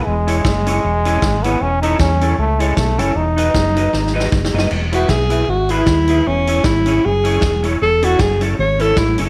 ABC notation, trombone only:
X:1
M:4/4
L:1/8
Q:"Swing" 1/4=155
K:E
V:1 name="Trombone"
G,6- G, B, | C D C2 A, G, A, C | D6 z2 | z8 |
z8 | z8 |]